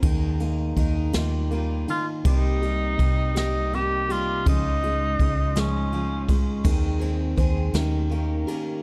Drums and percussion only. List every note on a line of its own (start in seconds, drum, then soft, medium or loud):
0.03 kick loud
0.03 ride medium
0.40 ride soft
0.77 kick medium
0.77 ride soft
1.13 snare loud
1.13 ride medium
1.51 ride soft
1.88 ride medium
2.25 kick loud
2.25 ride medium
2.62 ride soft
2.99 kick medium
2.99 ride soft
3.36 snare loud
3.36 ride medium
3.73 ride soft
4.10 ride medium
4.46 kick loud
4.46 ride medium
4.83 ride soft
5.19 kick medium
5.19 ride medium
5.55 snare loud
5.55 ride medium
5.93 ride soft
6.29 kick medium
6.29 ride medium
6.65 kick loud
6.65 ride medium
7.01 ride soft
7.38 kick medium
7.38 ride soft
7.74 snare loud
7.74 ride medium
8.11 ride soft
8.48 ride medium